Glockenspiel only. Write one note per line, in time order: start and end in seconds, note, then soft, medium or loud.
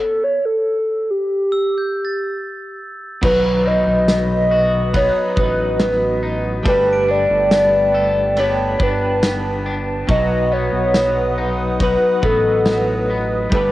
1.52 3.35 E6 medium
1.77 3.58 G6 soft
2.04 3.82 A6 soft
3.23 4.92 B5 medium
4.94 6.77 B5 medium
6.65 8.48 A5 medium
6.93 8.73 D7 medium
10.95 12.77 B5 medium